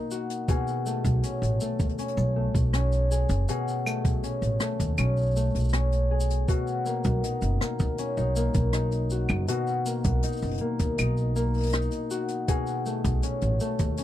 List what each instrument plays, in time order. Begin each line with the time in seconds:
Already playing: harp B2 A#3 D#4 F#4
0.11 harp F#4, shaker
0.30 closed hi-hat, shaker
0.48 harp B2 G#4, kick, closed hi-hat, shaker
0.67 shaker
0.86 harp A3, shaker
1.04 upright bass B1, kick, closed hi-hat, shaker
1.23 harp C#4, closed hi-hat, shaker
1.42 upright bass A1, closed hi-hat, shaker
1.60 harp A3, shaker
1.79 upright bass D#2, kick, closed hi-hat, shaker
1.89 closed hi-hat
1.98 harp C#4, closed hi-hat, shaker
2.08 closed hi-hat
2.17 upright bass B1, shaker
2.36 harp A3
2.55 upright bass B1, kick, closed hi-hat, shaker
2.73 harp C#4, cross-stick, closed hi-hat, shaker
2.92 closed hi-hat, shaker
3.11 harp G#4, shaker
3.29 upright bass F#1, closed hi-hat, shaker
3.48 harp B2 G#4, closed hi-hat, shaker
3.68 shaker
3.86 harp A3, claves, shaker
4.05 upright bass B1, kick, closed hi-hat, shaker
4.23 harp C#4, closed hi-hat, shaker
4.42 upright bass A1, closed hi-hat, shaker
4.60 harp A3, cross-stick, shaker
4.80 upright bass D#2, kick, closed hi-hat, shaker
4.97 upright bass B1, harp C#4, closed hi-hat, claves, shaker
5.17 shaker
5.22 shaker
5.26 shaker
5.31 shaker
5.36 harp A3, shaker
5.50 shaker
5.55 upright bass B1, closed hi-hat, shaker
5.59 shaker
5.64 shaker
5.69 shaker
5.73 harp C#4, cross-stick, closed hi-hat, shaker
5.92 closed hi-hat, shaker
6.11 harp G#4
6.20 shaker
6.30 closed hi-hat, shaker
6.48 harp B2 F#4, kick, closed hi-hat, shaker
6.67 shaker
6.86 harp A#3, shaker
7.04 upright bass B1, kick, closed hi-hat, shaker
7.24 harp D#4, closed hi-hat, shaker
7.41 upright bass F#1, closed hi-hat, shaker
7.61 harp A#3, cross-stick, shaker
7.79 upright bass D#2, kick, shaker
7.98 harp C#4, closed hi-hat, shaker
8.17 upright bass B1, harp D#4, shaker
8.36 harp A#3, shaker
8.54 upright bass B1, kick, closed hi-hat, shaker
8.73 harp D#4, cross-stick, closed hi-hat, shaker
8.92 closed hi-hat, shaker
9.10 harp F#4, shaker
9.29 upright bass F#1, claves, shaker
9.48 harp B2 F#4, closed hi-hat, shaker
9.67 shaker
9.86 harp A#3, shaker
10.04 upright bass B1, kick, closed hi-hat, shaker
10.22 harp D#4, closed hi-hat, shaker
10.27 shaker
10.32 shaker
10.37 shaker
10.41 upright bass F#1, closed hi-hat, shaker
10.45 closed hi-hat
10.48 closed hi-hat
10.51 closed hi-hat
10.54 closed hi-hat
10.57 harp A#3, closed hi-hat
10.79 upright bass D#2, kick, closed hi-hat, shaker
10.98 upright bass B1, harp D#4, closed hi-hat, claves, shaker
11.17 shaker
11.36 harp A#3, shaker
11.54 closed hi-hat, shaker
11.57 closed hi-hat
11.60 closed hi-hat, shaker
11.63 closed hi-hat
11.66 closed hi-hat
11.69 closed hi-hat, shaker
11.73 harp D#4, cross-stick, closed hi-hat, shaker
11.82 shaker
11.91 closed hi-hat, shaker
12.10 harp F#4, shaker
12.28 closed hi-hat, shaker
12.48 harp B2 G#4, kick, closed hi-hat, shaker
12.67 shaker
12.86 harp A3, shaker
13.04 upright bass B1, kick, closed hi-hat, shaker
13.23 harp C#4, closed hi-hat, shaker
13.41 upright bass A1, closed hi-hat, shaker
13.60 harp A3, shaker
13.79 upright bass D#2, kick, closed hi-hat, shaker
13.97 harp C#4, closed hi-hat, shaker